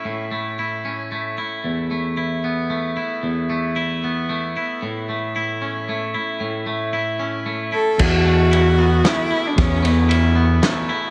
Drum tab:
CC |------|------|------|------|
RD |------|------|------|------|
SD |------|------|------|------|
BD |------|------|------|------|

CC |------|x-----|------|
RD |------|--x-x-|xxx-x-|
SD |------|----o-|----o-|
BD |------|o-----|o-----|